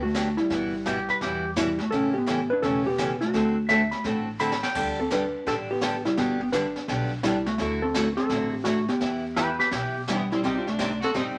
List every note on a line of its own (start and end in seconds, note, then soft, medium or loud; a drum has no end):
0.00 0.36 D2 medium
0.00 0.39 F#4 medium
0.05 0.37 A3 medium
0.15 0.27 D3 medium
0.15 0.27 F#3 medium
0.15 0.27 B3 medium
0.15 0.27 D4 medium
0.15 0.27 G4 medium
0.15 kick soft
0.15 snare medium
0.15 hi-hat pedal medium
0.37 1.53 G3 medium
0.37 1.52 E4 medium
0.37 snare soft
0.50 1.07 G1 medium
0.50 0.73 B2 medium
0.50 0.73 E3 medium
0.50 0.73 B3 medium
0.50 0.74 E4 medium
0.50 0.73 F#4 medium
0.50 brush sweep soft
0.50 kick soft
0.50 snare soft
0.86 0.98 B2 medium
0.86 0.98 E3 medium
0.86 0.98 B3 medium
0.86 0.98 E4 medium
0.86 0.98 F#4 medium
0.86 1.08 G4 medium
0.86 kick soft
0.86 snare medium
0.86 hi-hat pedal soft
1.09 1.21 B4 medium
1.09 snare soft
1.21 1.78 E2 medium
1.21 1.43 B2 soft
1.21 1.44 E3 medium
1.21 1.44 B3 medium
1.21 1.44 E4 medium
1.21 1.44 F#4 medium
1.21 1.50 G4 medium
1.21 brush sweep soft
1.21 kick soft
1.21 snare soft
1.56 1.68 B2 medium
1.56 1.68 E3 medium
1.56 1.80 G3 medium
1.56 1.68 B3 medium
1.56 1.79 E4 medium
1.56 1.69 E4 medium
1.56 1.68 F#4 medium
1.56 kick soft
1.56 snare medium
1.56 hi-hat pedal medium
1.79 1.92 A3 medium
1.79 1.92 F#4 medium
1.79 snare soft
1.91 2.49 A1 medium
1.91 2.14 C#3 medium
1.91 2.14 E3 medium
1.91 2.14 A3 medium
1.91 2.14 C#4 medium
1.91 2.15 G4 medium
1.91 2.13 A4 loud
1.91 brush sweep soft
1.91 kick soft
1.91 snare soft
2.14 2.49 B3 medium
2.14 2.51 G4 loud
2.26 2.38 C#3 medium
2.26 2.39 E3 medium
2.26 2.39 A3 medium
2.26 2.39 C#4 medium
2.26 2.39 G4 medium
2.26 kick soft
2.26 snare medium
2.26 hi-hat pedal medium
2.50 2.63 D4 medium
2.50 2.63 B4 loud
2.62 3.19 E1 medium
2.62 2.85 C#3 medium
2.62 2.85 E3 medium
2.62 2.85 A3 medium
2.62 2.85 C#4 medium
2.62 2.86 G4 medium
2.62 2.86 A4 loud
2.62 brush sweep medium
2.62 kick soft
2.62 snare soft
2.86 3.20 B3 medium
2.86 3.20 G4 loud
2.98 3.10 C#3 medium
2.98 3.10 E3 medium
2.98 3.10 A3 medium
2.98 3.10 C#4 medium
2.98 3.10 G4 medium
2.98 kick soft
2.98 snare medium
2.98 hi-hat pedal medium
3.21 4.60 A3 medium
3.21 4.14 F#4 medium
3.21 snare soft
3.33 3.90 D2 medium
3.33 3.56 D3 medium
3.33 3.56 A3 medium
3.33 3.56 C4 medium
3.33 3.56 F#4 medium
3.33 3.56 A4 medium
3.33 brush sweep soft
3.33 kick soft
3.33 snare soft
3.69 3.81 D3 medium
3.69 3.81 A3 medium
3.69 3.81 C4 medium
3.69 3.81 F#4 medium
3.69 3.81 A4 medium
3.69 3.91 E5 medium
3.69 kick soft
3.69 snare medium
3.69 hi-hat pedal medium
3.91 4.04 B5 medium
3.91 snare soft
4.04 4.61 A1 medium
4.04 4.27 D3 medium
4.04 4.27 A3 medium
4.04 4.27 C4 medium
4.04 4.27 F#4 medium
4.04 4.27 A4 medium
4.04 brush sweep medium
4.04 kick soft
4.04 snare soft
4.14 4.59 E4 medium
4.39 4.51 D3 medium
4.39 4.52 A3 medium
4.39 4.52 C4 medium
4.39 4.52 F#4 medium
4.39 4.52 A4 medium
4.39 4.62 B5 medium
4.39 hi-hat pedal medium
4.52 snare medium
4.63 4.86 G5 loud
4.63 snare medium
4.75 5.32 D2 medium
4.75 4.98 D3 medium
4.75 4.98 G3 medium
4.75 4.98 D4 medium
4.75 4.98 G4 medium
4.75 4.98 A4 medium
4.75 brush sweep soft
4.75 kick medium
4.75 snare soft
4.75 crash medium
5.00 5.11 C4 medium
5.00 5.11 A4 medium
5.10 5.22 D3 medium
5.10 5.23 G3 medium
5.10 5.23 D4 medium
5.10 5.45 D4 medium
5.10 5.23 G4 medium
5.10 5.23 A4 medium
5.10 5.48 B4 loud
5.10 kick soft
5.10 snare medium
5.10 hi-hat pedal soft
5.46 6.03 A1 medium
5.46 5.69 D3 medium
5.46 5.69 G3 medium
5.46 5.69 D4 medium
5.46 5.54 D4 medium
5.46 5.69 G4 medium
5.46 5.69 A4 medium
5.46 5.54 A4 loud
5.46 brush sweep medium
5.46 kick soft
5.46 snare soft
5.71 6.04 B3 medium
5.71 6.03 G4 loud
5.81 5.94 D3 medium
5.81 5.94 G3 medium
5.81 5.94 D4 medium
5.81 5.94 G4 medium
5.81 5.94 A4 medium
5.81 kick soft
5.81 snare medium
5.81 hi-hat pedal medium
6.05 6.17 G3 medium
6.05 6.17 E4 medium
6.05 snare soft
6.17 6.74 G1 medium
6.17 6.40 D3 medium
6.17 6.40 G3 medium
6.17 6.39 B3 medium
6.17 6.40 B3 medium
6.17 6.40 D4 medium
6.17 6.41 F#4 loud
6.17 6.40 G4 medium
6.17 brush sweep soft
6.17 kick soft
6.17 snare soft
6.41 6.53 B3 medium
6.41 6.53 G4 medium
6.52 6.65 D3 medium
6.52 6.65 G3 medium
6.52 6.65 B3 medium
6.52 7.20 D4 medium
6.52 6.65 D4 medium
6.52 6.65 G4 medium
6.52 7.24 B4 medium
6.52 kick soft
6.52 snare medium
6.52 hi-hat pedal medium
6.76 snare soft
6.88 7.18 B1 medium
6.88 7.11 D3 medium
6.88 7.11 G3 medium
6.88 7.11 B3 medium
6.88 7.11 D4 medium
6.88 7.11 G4 medium
6.88 brush sweep medium
6.88 kick soft
6.88 snare soft
7.23 7.54 C2 medium
7.23 7.36 D3 medium
7.23 7.46 G3 medium
7.23 7.36 G3 medium
7.23 7.36 B3 medium
7.23 7.36 D4 medium
7.23 7.46 E4 medium
7.23 7.36 G4 medium
7.23 kick soft
7.23 snare medium
7.23 hi-hat pedal medium
7.46 7.80 A3 medium
7.46 7.82 F#4 loud
7.46 snare soft
7.58 8.16 D2 medium
7.58 7.82 D3 medium
7.58 7.82 F#3 medium
7.58 7.82 A3 medium
7.58 7.82 E4 medium
7.58 7.82 F#4 medium
7.58 brush sweep soft
7.58 kick soft
7.58 snare soft
7.82 8.16 C4 medium
7.82 8.16 A4 loud
7.94 8.07 D3 medium
7.94 8.07 F#3 medium
7.94 8.07 A3 medium
7.94 8.07 E4 medium
7.94 8.07 F#4 medium
7.94 kick soft
7.94 snare medium
7.94 hi-hat pedal medium
8.17 8.62 C4 medium
8.17 8.67 A4 loud
8.17 snare soft
8.29 8.87 A1 medium
8.29 8.53 D3 medium
8.29 8.53 F#3 medium
8.29 8.53 A3 medium
8.29 8.53 E4 medium
8.29 8.53 F#4 medium
8.29 brush sweep medium
8.29 kick soft
8.29 snare soft
8.64 8.77 D3 medium
8.64 8.78 F#3 medium
8.64 8.87 A3 medium
8.64 8.78 A3 medium
8.64 8.78 E4 medium
8.64 8.86 F#4 loud
8.64 8.78 F#4 medium
8.64 kick soft
8.64 snare medium
8.64 hi-hat pedal medium
8.88 10.04 B3 medium
8.88 10.04 G4 medium
8.88 snare soft
9.01 9.58 E2 medium
9.01 9.23 E3 medium
9.01 9.23 B3 medium
9.01 9.23 E4 medium
9.01 9.24 G4 medium
9.01 brush sweep soft
9.01 kick soft
9.01 snare soft
9.36 9.49 E3 medium
9.36 9.49 B3 medium
9.36 9.49 E4 medium
9.36 9.58 G4 medium
9.36 9.49 G4 medium
9.36 9.59 B4 medium
9.36 kick soft
9.36 snare medium
9.36 hi-hat pedal soft
9.59 9.71 G4 medium
9.59 9.72 B4 medium
9.59 snare soft
9.71 10.29 B1 medium
9.71 9.95 E3 medium
9.71 9.95 B3 medium
9.71 9.95 E4 medium
9.71 10.01 G4 medium
9.71 9.95 G4 medium
9.71 brush sweep medium
9.71 kick soft
9.71 snare medium
10.08 10.20 E3 medium
10.08 10.30 G3 medium
10.08 10.29 B3 medium
10.08 10.20 B3 medium
10.08 10.30 D4 medium
10.08 10.20 E4 medium
10.08 10.21 G4 medium
10.08 kick soft
10.08 snare medium
10.08 hi-hat pedal medium
10.32 10.43 G3 medium
10.32 10.43 C4 medium
10.32 10.44 E4 medium
10.32 snare soft
10.43 11.00 C2 medium
10.43 10.65 C3 medium
10.43 10.66 G3 medium
10.43 10.66 C4 medium
10.43 10.57 C4 medium
10.43 10.56 D#4 medium
10.43 10.66 D#4 medium
10.43 10.66 G4 medium
10.43 10.57 G4 loud
10.43 10.66 D5 medium
10.43 brush sweep soft
10.43 kick soft
10.43 snare soft
10.57 10.66 D4 medium
10.57 10.68 F4 medium
10.66 11.00 A3 medium
10.66 11.01 D4 medium
10.66 11.04 F#4 medium
10.66 snare soft
10.79 10.90 C3 medium
10.79 10.90 G3 medium
10.79 10.90 C4 medium
10.79 10.91 D#4 medium
10.79 10.91 G4 medium
10.79 10.91 D5 medium
10.79 kick soft
10.79 snare medium
10.79 hi-hat pedal soft
11.01 11.14 C4 medium
11.01 11.13 F#4 medium
11.01 11.15 A4 loud
11.01 snare soft
11.14 11.38 G1 medium
11.14 11.37 C3 medium
11.14 11.36 G3 medium
11.14 11.21 C4 medium
11.14 11.37 C4 medium
11.14 11.24 D#4 medium
11.14 11.37 D#4 medium
11.14 11.36 G4 soft
11.14 11.21 G4 medium
11.14 11.37 D5 medium
11.14 brush sweep medium
11.14 kick soft
11.14 snare soft